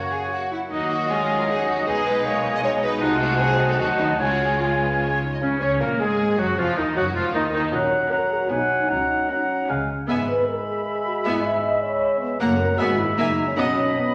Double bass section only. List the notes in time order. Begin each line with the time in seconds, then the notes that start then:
0.71 D#2
1.87 B1
3.02 C2
3.80 D#2
4.19 C#2
5.41 C#2
5.60 C#2
5.80 A#1
5.99 G#1
6.38 F#1
6.57 F1
6.77 D#2
6.96 F#1
7.15 F1
7.34 D#2
7.53 D#2
7.72 A#1
8.50 B1
8.89 C#2
9.69 C#2
10.09 G#1
11.25 G#1
12.40 F#1
12.78 G#1
13.17 F#1
13.58 B1